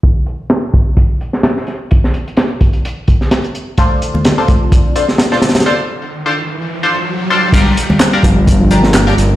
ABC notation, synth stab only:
X:1
M:4/4
L:1/16
Q:"Swing 16ths" 1/4=128
K:Gm
V:1 name="Synth stab"
z16 | z16 | [DFAc]4- [DFAc] [DFAc] z4 [DFAc] z2 [DFAc] z2 | [DFAc] z4 [DFAc] z4 [DFAc] z3 [DFAc]2 |
[DFGB]4- [DFGB] [DFGB] z4 [DFGB] z2 [DFGB] z2 |]